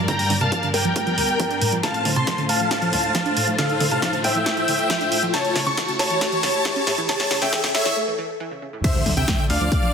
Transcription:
Already playing: string section G2 G3 A#4 D5, riser
0.08 synth pluck D3, supersaw synth G5 A#5, grand piano A#5, kick, closed hi-hat
0.19 open hi-hat
0.30 synth pluck D3, open hi-hat, mid tom
0.41 synth pluck C3, supersaw synth F5 A5, grand piano A5, closed hi-hat
0.52 synth pluck F3, kick, closed hi-hat
0.63 synth pluck D3, closed hi-hat
0.74 supersaw synth A#4 G5, grand piano G5, open hi-hat, mid tom
0.85 synth pluck F3
0.96 synth pluck A3, kick, closed hi-hat
1.07 synth pluck F3, closed hi-hat
1.18 synth pluck D2, open hi-hat
1.29 closed hi-hat
1.40 synth pluck F3, kick, closed hi-hat
1.51 synth pluck D4, closed hi-hat
1.61 synth pluck A2, open hi-hat
1.72 synth pluck F3, closed hi-hat
1.83 string section A2 A3 F4 C5, synth pluck D3, supersaw synth F5 A5, grand piano A5, kick, snare, closed hi-hat
1.94 closed hi-hat
2.05 synth pluck D3, open hi-hat, mid tom
2.16 synth pluck C3, supersaw synth A5 C6, grand piano C6, closed hi-hat
2.27 synth pluck F3, kick, snare, closed hi-hat
2.38 synth pluck D3, closed hi-hat
2.49 supersaw synth F5 A5, grand piano A5, open hi-hat
2.60 synth pluck F3, closed hi-hat
2.71 synth pluck A3, kick, snare, closed hi-hat
2.82 synth pluck F3, closed hi-hat
2.93 synth pluck D2, open hi-hat, mid tom
3.04 closed hi-hat
3.15 synth pluck F3, kick, snare, closed hi-hat
3.26 synth pluck D4, closed hi-hat
3.37 synth pluck A2, open hi-hat
3.48 synth pluck F3
3.58 synth pluck D3, supersaw synth A4 F5, grand piano F5, kick, snare, closed hi-hat
3.69 closed hi-hat
3.80 synth pluck D3, open hi-hat, mid tom
3.91 synth pluck C3, supersaw synth F5 A5, grand piano A5, closed hi-hat
4.02 synth pluck F3, kick, snare, closed hi-hat
4.13 synth pluck D3, closed hi-hat
4.24 supersaw synth E5 G5, grand piano G5, open hi-hat, mid tom
4.35 synth pluck F3, closed hi-hat
4.46 synth pluck A3, kick, snare, closed hi-hat
4.57 synth pluck F3, closed hi-hat
4.68 synth pluck D2, open hi-hat
4.79 closed hi-hat
4.90 synth pluck F3, kick, snare, closed hi-hat
5.01 synth pluck D4, closed hi-hat
5.12 synth pluck A2, open hi-hat
5.23 synth pluck F3, closed hi-hat
5.34 synth pluck C#3, string section E4 C#5, supersaw synth C#5 A5, grand piano A5, kick, snare, closed hi-hat
5.45 closed hi-hat
5.56 synth pluck C#3, snare, open hi-hat, mid tom
5.67 synth pluck C#3, supersaw synth A5 C#6, grand piano C#6, closed hi-hat
5.77 synth pluck E3, kick, snare, closed hi-hat
5.88 synth pluck C#3, closed hi-hat
5.99 supersaw synth C#5 A5, grand piano A5, snare, open hi-hat
6.10 synth pluck E3, closed hi-hat
6.21 synth pluck A3, kick, snare, closed hi-hat
6.32 synth pluck E3, closed hi-hat
6.43 synth pluck C#2, snare, open hi-hat, mid tom
6.54 closed hi-hat
6.65 synth pluck E3, kick, snare, closed hi-hat
6.76 synth pluck C#4, closed hi-hat
6.87 synth pluck A2, snare, open hi-hat
6.98 synth pluck E3, closed hi-hat
7.09 synth pluck C#3, supersaw synth C#5 A5, grand piano A5, kick, snare, closed hi-hat
7.20 snare, open hi-hat
7.31 synth pluck C#3, snare, open hi-hat, mid tom
7.42 synth pluck C#3, supersaw synth E5 G5, grand piano G5, snare, closed hi-hat
7.53 synth pluck E3, kick, snare, closed hi-hat
7.64 synth pluck C#3, snare, closed hi-hat
7.75 supersaw synth C#5 E5, grand piano E5, snare, open hi-hat, mid tom
7.86 synth pluck E3, snare, closed hi-hat
7.97 synth pluck A3
8.08 synth pluck E3
8.18 synth pluck E3
8.40 synth pluck E3
8.51 synth pluck C#3
8.62 synth pluck C#3
8.73 synth pluck A2
8.84 string section D3 D4 F4, synth pluck D3, supersaw synth C5 E5, grand piano E5, kick, closed hi-hat, crash, impact
8.95 analog synth bass D2, closed hi-hat
9.06 analog synth bass D2, synth pluck D3, open hi-hat, mid tom
9.17 analog synth bass D2, synth pluck C3, supersaw synth E5 G5, grand piano G5, closed hi-hat
9.28 synth pluck F3, kick, snare, closed hi-hat
9.39 synth pluck D3, closed hi-hat
9.50 analog synth bass D2, supersaw synth D5 F5, grand piano F5, open hi-hat
9.61 analog synth bass D2, synth pluck F3, closed hi-hat
9.72 synth pluck A3, kick, closed hi-hat
9.83 synth pluck F3, closed hi-hat

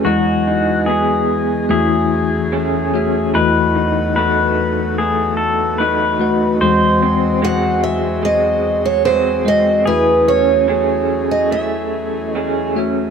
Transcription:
Already playing: harmonium E3 F#3 G#4, clean electric guitar A3 C#4 G#4
0.04 tine electric piano E2 E3 G#3 E4 F#4 D#5, clean electric guitar F#3, harmonium B3 D#5, pedal steel guitar F#4
0.47 clean electric guitar D#4
0.86 clean electric guitar B3 G#4, pedal steel guitar G#4
1.69 harmonium E2 A3 C#4 E4, tine electric piano E2 E3 A3 F#4 G#4 E5, clean electric guitar E3, pedal steel guitar G#4
2.52 clean electric guitar A3 C#4 G#4
2.94 tine electric piano A3 F#4 G#4 E5, clean electric guitar C#4
3.34 tine electric piano E2 E3 A3 F#4 B4 D#5, clean electric guitar E3, harmonium A3 B3 F#4 B4, pedal steel guitar B4
3.75 clean electric guitar D#4
4.16 clean electric guitar A3 D#4 F#4, pedal steel guitar B4
4.98 clean electric guitar A3, pedal steel guitar G#4
5.37 pedal steel guitar A4
5.78 clean electric guitar A3 D#4 F#4, pedal steel guitar B4
6.20 tine electric piano A3 F#4 B4 F#5, clean electric guitar D#4
6.60 tine electric piano E2 E3 G#3 F#4 C5 D#5, harmonium E2 F#3 G#3 C4 G#4, pedal steel guitar C5
7.02 clean electric guitar C4
7.42 clean electric guitar G#3 C4 F#4, steel-string acoustic guitar F#5
7.84 steel-string acoustic guitar E5
8.23 clean electric guitar G#3, steel-string acoustic guitar D#5
8.85 steel-string acoustic guitar C#5
9.05 clean electric guitar G#3 C4 F#4, steel-string acoustic guitar C5
9.45 tine electric piano G#3 F#4 C5 D#5, clean electric guitar C4, steel-string acoustic guitar D#5
9.86 tine electric piano E2 E3 A3 F#4 G#4 E5, clean electric guitar E3, harmonium A3 C#4 E4, pedal steel guitar G#4, steel-string acoustic guitar B4
10.28 clean electric guitar C#4, steel-string acoustic guitar C#5
10.68 clean electric guitar A3 C#4 G#4
11.31 steel-string acoustic guitar D#5
11.51 clean electric guitar A3, steel-string acoustic guitar E5
12.31 clean electric guitar A3, steel-string acoustic guitar D#5
12.36 clean electric guitar C#4 G#4
12.76 tine electric piano A3 F#4 G#4 E5, clean electric guitar C#4

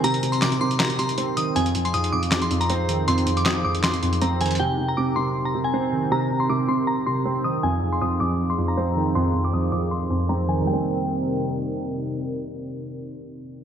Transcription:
Already playing: grand piano C3 D#3 C4, analog synth pad C3 C4 D#4 A#4
0.04 grand piano C3, synth bell A#5, closed hi-hat
0.14 closed hi-hat
0.23 grand piano C3, closed hi-hat
0.32 synth bell C6, closed hi-hat
0.42 grand piano C3, synth bell D6, snare, clap, closed hi-hat
0.52 closed hi-hat
0.61 grand piano C3, synth bell C6
0.71 closed hi-hat
0.80 synth bell A#5, snare, clap, closed hi-hat
0.90 closed hi-hat
0.99 grand piano C3, synth bell C6, closed hi-hat
1.09 closed hi-hat
1.18 grand piano C4, closed hi-hat
1.37 grand piano D#3, synth bell D#6, closed hi-hat
1.56 grand piano F2, analog synth pad F3 C4 G#4, synth bell G#5, closed hi-hat
1.66 closed hi-hat
1.75 grand piano F2, closed hi-hat
1.85 synth bell C6, closed hi-hat
1.94 grand piano F2, synth bell D#6, closed hi-hat
2.04 closed hi-hat
2.13 grand piano F2, synth bell D6
2.23 closed hi-hat
2.32 snare, clap, closed hi-hat
2.42 synth bell C6, closed hi-hat
2.51 grand piano F2, closed hi-hat
2.61 synth bell A#5, closed hi-hat
2.70 grand piano C4, closed hi-hat
2.89 grand piano D#3, closed hi-hat
3.08 grand piano F2, synth bell C6, closed hi-hat
3.18 closed hi-hat
3.27 grand piano F2, closed hi-hat
3.37 synth bell D6, closed hi-hat
3.46 grand piano F2, synth bell D#6, snare, clap, closed hi-hat
3.65 grand piano F2, synth bell D6
3.75 closed hi-hat
3.84 synth bell C6, snare, clap, closed hi-hat
3.94 closed hi-hat
4.03 grand piano F2, closed hi-hat
4.13 closed hi-hat
4.21 grand piano C4, synth bell A#5, closed hi-hat
4.41 grand piano D#3, synth bell G#5, closed hi-hat
4.46 closed hi-hat
4.51 closed hi-hat
4.55 closed hi-hat
4.60 grand piano C3, analog synth pad C3 A#4, synth bell G5
4.79 grand piano C3
4.88 synth bell A#5
4.97 grand piano C3, synth bell D6
5.16 grand piano C3, synth bell C6
5.45 synth bell A#5
5.55 grand piano C3
5.64 synth bell G#5
5.74 grand piano C4
5.93 grand piano D#3
6.11 grand piano C3, synth bell A#5
6.31 grand piano C3
6.40 synth bell C6
6.50 grand piano C3, synth bell D6
6.68 grand piano C3, synth bell C6
6.87 synth bell A#5
7.06 grand piano C3, synth bell C6
7.25 grand piano C4
7.44 grand piano D#3, synth bell D#6
7.63 grand piano F2, analog synth pad F3 D#4 G#4, synth bell G#5
7.82 grand piano F2
7.93 synth bell C6
8.02 grand piano F2, synth bell D#6
8.20 grand piano F2, synth bell D6
8.50 synth bell C6
8.58 grand piano F2
8.68 synth bell A#5
8.77 grand piano C4
8.96 grand piano D#3
9.15 grand piano F2, synth bell C6
9.34 grand piano F2
9.45 synth bell D6
9.53 grand piano F2, synth bell D#6
9.72 grand piano F2, synth bell D6
9.91 synth bell C6
10.10 grand piano F2
10.29 grand piano C4, synth bell A#5
10.48 grand piano D#3, synth bell G#5
10.61 grand piano D#3 G3
10.67 analog synth pad C3 C4 D#4 A#4, grand piano A#3, synth bell G5
10.73 grand piano C4

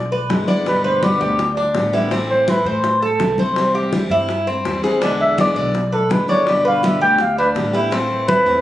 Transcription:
Already playing: upright bass B1, cuban tres D5
0.12 cuban tres B4, high bongo, high conga
0.30 upright bass G1, steel-string acoustic guitar D3 G#3 B3 E4, high bongo, low bongo, high conga
0.48 steel-string acoustic guitar D3 G#3 B3 E4, cuban tres D5, high bongo, high conga
0.66 steel-string acoustic guitar B2 D3 G3 B3 G4, muted trumpet B4, high bongo, high conga
0.84 cuban tres B4, muted trumpet C5, high conga
1.02 steel-string acoustic guitar B2 D3 G3 B3 G4, muted trumpet D5, high bongo, high conga
1.20 upright bass D2, cuban tres G4, high bongo, high conga
1.39 muted steel-string acoustic guitar stroke, high bongo, high conga
1.57 cuban tres D4, high bongo, high conga
1.74 upright bass A1, steel-string acoustic guitar D3 G3 B3 G4, high bongo, low bongo, high conga
1.93 steel-string acoustic guitar D3 G3 B3 G4, cuban tres E4, high bongo, high conga
2.11 steel-string acoustic guitar E3 A3 C4 E4, cuban tres C4, high bongo, high conga
2.30 muted trumpet C5, high conga
2.48 steel-string acoustic guitar E3 A3 C4 E4, cuban tres E4, muted trumpet B4, high bongo, high conga
2.65 upright bass A2, cuban tres C5, high bongo
2.84 muted steel-string acoustic guitar stroke, high bongo, high conga
3.02 cuban tres A4, high bongo, high conga
3.19 upright bass C2, steel-string acoustic guitar E3 A3 C4 E4, high bongo, low bongo, high conga
3.38 steel-string acoustic guitar A3 C4 E4, cuban tres C5, high bongo, high conga
3.56 steel-string acoustic guitar C3 E3 G3 C4 E4, high bongo, high conga
3.75 cuban tres G4, high conga
3.93 steel-string acoustic guitar C3 E3 G3 C4 E4, high bongo, high conga
4.10 upright bass G2, cuban tres E4, high bongo, high conga
4.29 muted steel-string acoustic guitar stroke, high bongo, high conga
4.47 cuban tres C4, high bongo, high conga
4.65 upright bass E2, steel-string acoustic guitar E3 G3 C4 E4, high bongo, low bongo, high conga
4.84 steel-string acoustic guitar E3 G3 C4 E4, cuban tres G#4, high bongo, high conga
5.02 steel-string acoustic guitar B2 D3 G#3 B3 E4, cuban tres D4, high bongo, high conga
5.21 muted trumpet E5, high conga
5.38 steel-string acoustic guitar B2 D3 G#3 B3 E4, cuban tres G#4, muted trumpet D5, high bongo, high conga
5.55 upright bass B1, cuban tres D5, high bongo
5.74 muted steel-string acoustic guitar stroke, high bongo, high conga
5.92 muted trumpet A4, cuban tres B4, high bongo, high conga
6.09 upright bass G1, steel-string acoustic guitar D3 G#3 B3 E4, muted trumpet B4, high bongo, low bongo, high conga
6.28 steel-string acoustic guitar D3 G#3 B3 E4, muted trumpet C#5, cuban tres D5, high bongo, high conga
6.47 steel-string acoustic guitar B2 D3 G3 B3 G4, muted trumpet D5, high bongo, high conga
6.65 cuban tres B4, muted trumpet F5, high conga
6.83 steel-string acoustic guitar B2 D3 G3 B3 G4, muted trumpet E5, high bongo, high conga
7.01 upright bass D2, cuban tres G4, muted trumpet G5, high bongo, high conga
7.19 muted trumpet F5, muted steel-string acoustic guitar stroke, high bongo, high conga
7.37 cuban tres D4, muted trumpet B4, high bongo, high conga
7.55 upright bass A1, steel-string acoustic guitar D3 G3 B3 G4, high bongo, low bongo, high conga
7.73 steel-string acoustic guitar D3 G3 B3 G4, cuban tres E4, high bongo, high conga
7.91 steel-string acoustic guitar E3 A3 C4 E4, cuban tres C4, high bongo, high conga
8.11 high conga
8.28 cuban tres E4, muted trumpet B4, high bongo, high conga
8.46 upright bass E2, steel-string acoustic guitar A3 C4 E4, high bongo, high conga

